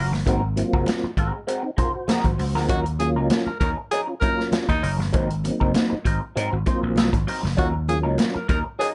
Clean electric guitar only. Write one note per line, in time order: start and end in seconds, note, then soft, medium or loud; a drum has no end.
0.00 0.11 A#3 medium
0.00 0.12 C#4 medium
0.00 0.12 F#4 medium
0.00 0.12 A#4 medium
0.13 muted clean electric guitar stroke soft
0.27 0.42 G#3 medium
0.27 0.42 C4 medium
0.27 0.43 F#4 medium
0.27 0.43 A#4 medium
0.58 muted clean electric guitar stroke soft
0.74 0.85 G#3 soft
0.74 0.84 C4 medium
0.74 0.84 F#4 medium
0.74 0.84 A#4 medium
0.87 muted clean electric guitar stroke soft
1.04 muted clean electric guitar stroke soft
1.17 1.38 G#3 medium
1.17 1.34 C4 medium
1.17 1.33 F#4 medium
1.17 1.32 A#4 medium
1.34 muted clean electric guitar stroke medium
1.47 1.63 G#3 loud
1.47 1.63 C4 medium
1.47 1.63 F#4 medium
1.47 1.62 A#4 medium
1.63 muted clean electric guitar stroke soft
1.77 1.90 G#3 medium
1.77 1.90 C4 medium
1.77 1.91 F#4 medium
1.77 1.91 C5 medium
1.95 muted clean electric guitar stroke soft
2.08 2.24 G#3 medium
2.08 2.24 C4 medium
2.08 2.25 F#4 medium
2.08 2.25 A#4 loud
2.38 muted clean electric guitar stroke soft
2.55 2.67 G#3 medium
2.55 2.67 C4 medium
2.55 2.66 F#4 medium
2.55 2.66 A#4 medium
2.69 2.85 F#3 medium
2.69 2.85 C#4 medium
2.69 2.85 D#4 loud
2.69 2.86 A#4 loud
3.00 muted clean electric guitar stroke soft
3.16 3.28 F#3 medium
3.16 3.28 C#4 medium
3.16 3.27 D#4 medium
3.16 3.27 A#4 medium
3.32 muted clean electric guitar stroke soft
3.48 muted clean electric guitar stroke soft
3.62 3.77 F#3 medium
3.62 3.77 C#4 medium
3.62 3.78 D#4 medium
3.62 3.77 A#4 medium
3.78 muted clean electric guitar stroke medium
3.92 4.07 F#3 medium
3.92 4.08 C#4 medium
3.92 4.08 D#4 medium
3.92 4.07 A#4 medium
4.08 muted clean electric guitar stroke soft
4.22 4.34 F#3 medium
4.22 4.35 C#4 medium
4.22 4.35 D#4 medium
4.22 4.35 A#4 medium
4.39 muted clean electric guitar stroke soft
4.53 muted clean electric guitar stroke soft
4.69 muted clean electric guitar stroke medium
4.82 4.98 F#3 medium
4.82 4.98 C#4 medium
4.82 4.98 D#4 medium
4.82 4.97 A#4 medium
4.98 muted clean electric guitar stroke soft
5.13 5.29 F#3 loud
5.13 5.29 C4 medium
5.13 5.29 D#4 loud
5.13 5.30 A#4 loud
5.44 muted clean electric guitar stroke soft
5.60 5.72 F#3 soft
5.60 5.72 C4 medium
5.60 5.71 D#4 medium
5.60 5.71 A#4 medium
5.75 muted clean electric guitar stroke soft
5.90 muted clean electric guitar stroke soft
6.05 6.20 F#3 medium
6.05 6.21 C4 medium
6.05 6.21 D#4 medium
6.05 6.20 A#4 medium
6.21 muted clean electric guitar stroke medium
6.36 6.51 F#3 medium
6.36 6.51 C4 medium
6.36 6.51 D#4 medium
6.36 6.51 A#4 medium
6.52 muted clean electric guitar stroke soft
6.66 6.78 F#3 medium
6.66 6.79 C4 medium
6.66 6.79 D#4 medium
6.66 6.79 C5 medium
6.82 muted clean electric guitar stroke medium
6.96 muted clean electric guitar stroke soft
7.13 muted clean electric guitar stroke soft
7.27 7.43 F#3 medium
7.27 7.43 C4 medium
7.27 7.42 D#4 medium
7.27 7.41 A#4 medium
7.43 muted clean electric guitar stroke soft
7.57 7.73 F#3 medium
7.57 7.73 C#4 medium
7.57 7.73 D#4 medium
7.57 7.74 A#4 loud
7.89 muted clean electric guitar stroke soft
8.03 8.16 F#3 medium
8.03 8.15 C#4 soft
8.03 8.15 D#4 medium
8.03 8.15 A#4 medium
8.35 muted clean electric guitar stroke medium
8.48 8.64 F#3 medium
8.48 8.65 C#4 medium
8.48 8.64 D#4 medium
8.48 8.64 A#4 loud
8.65 muted clean electric guitar stroke soft
8.79 8.95 F#3 medium
8.79 8.95 C#4 medium
8.79 8.95 D#4 medium
8.79 8.94 A#4 medium